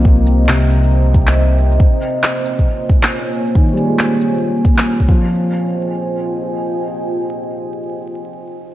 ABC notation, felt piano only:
X:1
M:4/4
L:1/16
Q:"Swing 16ths" 1/4=137
K:Fm
V:1 name="Felt piano" clef=bass
[F,B,C]4 C,8- C,2 z2 | z16 | E, G, A,8- A,2 z2 F,2- | F,16- |
F,16 |]